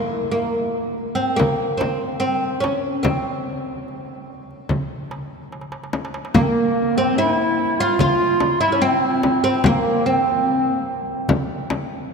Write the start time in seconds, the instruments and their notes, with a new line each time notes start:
Already playing: oud A#3
0.31 oud A#3
1.15 oud C4
1.20 darbuka ka
1.36 oud A#3, frame drum
1.41 darbuka dum
1.77 oud C4, darbuka tek, frame drum
2.20 oud C4, darbuka ka
2.60 oud C#4, darbuka tek, frame drum
3.03 oud C4, frame drum, darbuka dum
3.88 darbuka ka
4.51 darbuka ka
4.69 frame drum, darbuka dum
5.11 darbuka tek
5.52 darbuka tek
5.61 darbuka ka
5.72 darbuka tek
5.84 darbuka ka
5.93 darbuka tek, frame drum
6.05 darbuka ka
6.14 darbuka tek
6.25 darbuka ka
6.34 oud A#3, clarinet A#3, frame drum, darbuka dum
6.43 clarinet C4
6.48 clarinet A#3
6.96 clarinet C4, oud C4
7.17 clarinet E4, oud E4
7.79 clarinet F4, oud F4
7.99 clarinet F4, oud F4, darbuka dum, frame drum
8.40 darbuka tek, frame drum
8.61 oud E4, clarinet E4
8.72 oud C#4
8.82 oud C4, clarinet C4
9.02 darbuka ka
9.23 darbuka tek, frame drum
9.44 oud C4, clarinet C4
9.64 clarinet A#3, oud A#3, darbuka dum, frame drum
9.72 clarinet C4
9.80 clarinet A#3
10.06 clarinet C4, oud C4
11.29 darbuka dum, frame drum
11.70 darbuka tek, frame drum